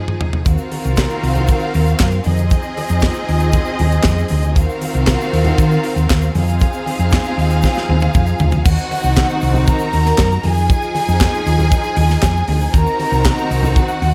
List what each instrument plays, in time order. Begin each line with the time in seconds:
Already playing: string section F3 D#4 G#4
0.08 mid tom
0.21 floor tom
0.33 floor tom
0.45 fingered electric bass D#2, string section D#3 C4 F4 F#4 A#4 F5, kick, closed hi-hat, muted conga, shaker
0.58 shaker
0.72 open hi-hat, muted conga
0.84 fingered electric bass C2, closed hi-hat, shaker
0.96 kick, snare, clap, closed hi-hat, high conga, shaker
1.10 shaker
1.23 fingered electric bass C2, open hi-hat
1.35 closed hi-hat, low conga, shaker
1.47 kick, closed hi-hat, muted conga, shaker
1.59 shaker
1.74 fingered electric bass D#2, open hi-hat, muted conga
1.85 closed hi-hat, shaker
1.99 fingered electric bass F#2, kick, snare, clap, closed hi-hat, high conga, shaker
2.11 shaker
2.24 fingered electric bass F2, string section F3 C4 D#4 G#4 D#5, open hi-hat, high conga, shaker
2.37 closed hi-hat, high conga, shaker
2.50 kick, closed hi-hat, muted conga, shaker
2.62 shaker
2.77 open hi-hat, muted conga
2.88 fingered electric bass F2, closed hi-hat, shaker
3.00 kick, snare, clap, closed hi-hat, high conga, shaker
3.13 shaker
3.28 fingered electric bass D#2, open hi-hat
3.40 closed hi-hat, shaker
3.52 kick, closed hi-hat, muted conga, low conga, shaker
3.65 shaker
3.79 fingered electric bass D#2, open hi-hat, muted conga, low conga
3.92 closed hi-hat, shaker
4.03 fingered electric bass F2, kick, snare, clap, closed hi-hat, high conga, shaker
4.18 shaker
4.28 fingered electric bass D2, open hi-hat, high conga, shaker
4.43 closed hi-hat, high conga, shaker
4.54 fingered electric bass D#2, string section D#3 C4 F4 F#4 A#4 F5, kick, closed hi-hat, muted conga, shaker
4.69 shaker
4.81 open hi-hat, muted conga
4.94 fingered electric bass C2, closed hi-hat, shaker
5.06 kick, snare, clap, closed hi-hat, high conga, shaker
5.21 shaker
5.33 fingered electric bass D#2, open hi-hat
5.44 closed hi-hat, low conga, shaker
5.58 fingered electric bass D#3, kick, closed hi-hat, muted conga, shaker
5.71 shaker
5.83 open hi-hat
5.96 fingered electric bass D#2, closed hi-hat, shaker
6.09 fingered electric bass D#2, kick, snare, clap, closed hi-hat, high conga, shaker
6.22 shaker
6.34 fingered electric bass F2, string section F3 C4 D#4 G#4 F5, open hi-hat, high conga, shaker
6.47 closed hi-hat, high conga, shaker
6.60 kick, closed hi-hat, muted conga, shaker
6.73 shaker
6.86 open hi-hat, muted conga
6.99 fingered electric bass F2, closed hi-hat, shaker
7.11 kick, snare, clap, closed hi-hat, high conga, shaker
7.24 shaker
7.38 fingered electric bass D#2, open hi-hat
7.50 closed hi-hat, shaker
7.62 kick, snare, muted conga, low conga, shaker
7.74 snare, shaker
7.89 fingered electric bass D#2, muted conga, low conga
8.00 high tom, shaker
8.14 fingered electric bass F2, kick, mid tom, high conga, shaker
8.26 shaker
8.38 fingered electric bass D2, floor tom, high conga, shaker
8.51 floor tom, high conga, shaker
8.65 fingered electric bass D#2, string section D#3 C4 D#4 F#4 F#5, kick, crash, muted conga, shaker
8.77 shaker
8.91 open hi-hat, muted conga
9.03 fingered electric bass C2, shaker
9.16 kick, snare, clap, closed hi-hat, high conga, shaker
9.29 shaker
9.41 fingered electric bass C2, open hi-hat, shaker
9.53 low conga, shaker
9.67 string section A#4 A#5, kick, closed hi-hat, muted conga, shaker
9.79 shaker
9.93 fingered electric bass D#2, open hi-hat, muted conga
10.06 snare, shaker
10.18 fingered electric bass F#2, kick, snare, clap, closed hi-hat, high conga, shaker
10.32 shaker
10.43 fingered electric bass F2, string section F3 D#4 G#4 G#5, open hi-hat, high conga
10.57 shaker
10.69 kick, closed hi-hat, muted conga, shaker
10.82 shaker
10.95 open hi-hat, muted conga
11.08 fingered electric bass F2, shaker
11.20 kick, snare, clap, closed hi-hat, high conga, shaker
11.34 shaker
11.46 fingered electric bass D#2, open hi-hat, shaker
11.58 low conga, shaker
11.72 kick, closed hi-hat, muted conga, low conga, shaker
11.83 shaker
11.96 fingered electric bass D#2, open hi-hat, muted conga, low conga
12.09 snare, shaker
12.22 fingered electric bass F2, kick, snare, clap, closed hi-hat, high conga, shaker
12.36 shaker
12.48 fingered electric bass D2, open hi-hat, high conga
12.61 shaker
12.73 fingered electric bass D#2, string section D#3 C4 D#4 F#4 A#4 A#5, kick, closed hi-hat, muted conga, shaker
12.87 shaker
13.00 open hi-hat, muted conga
13.12 fingered electric bass C2, shaker
13.24 kick, snare, clap, closed hi-hat, high conga, shaker
13.38 shaker
13.50 fingered electric bass C2, open hi-hat, shaker
13.63 low conga, shaker
13.76 string section F#4 F#5, kick, closed hi-hat, muted conga, shaker
13.88 shaker
14.02 fingered electric bass D#2, open hi-hat, muted conga